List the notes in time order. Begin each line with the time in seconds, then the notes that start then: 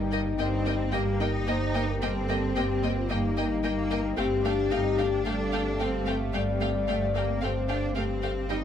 Already playing: G1 G2 G3 A#3 D#4 G4 G5
0.11 A#3 D#5 G5
0.38 G2 A#3 C4 D#5 G5
0.65 A#3 D#5 G5
0.92 G2 A#3 G4 D#5 G5
1.20 A#3 D#4 D#5 G5
1.47 G2 A#3 C5 D#5 G5
1.74 A#3 D#5 G5
1.89 A#4
2.01 G2 A#3 C4 A4 D#5 G5
2.29 A#3 D#5 G5
2.55 G2 A#3 G4 D#5 G5
2.83 A#3 D#5 G5
2.97 F4
3.09 G2 A#3 D#4 D#5 G5
3.37 A#3 D#5 G5
3.63 G2 A#3 D#5 G5
3.90 A#3 D#5 G5
4.17 G1 G2 A3 C4 G4 F5 G5
4.45 A3 D4 F5 G5
4.71 G2 A3 D#4 F5 G5
4.98 A3 D4 F5 G5
5.25 G2 A3 A4 F5 G5
5.52 A3 F5 G5
5.79 G2 A3 C4 F5 G5
6.06 A3 F5 G5
6.33 G2 G3 A3 D5 F5 G5
6.60 A3 F5 G5
6.87 G2 A3 F5 G5
7.15 A3 A#3 F5 G5
7.42 G2 A3 C4 C5 F5 G5
7.69 A3 D4 F5 G5
7.95 G2 A3 C4 G4 F5 G5
8.22 A3 F5 G5
8.49 G2 G3 C4 D#4 C5 D#5 G5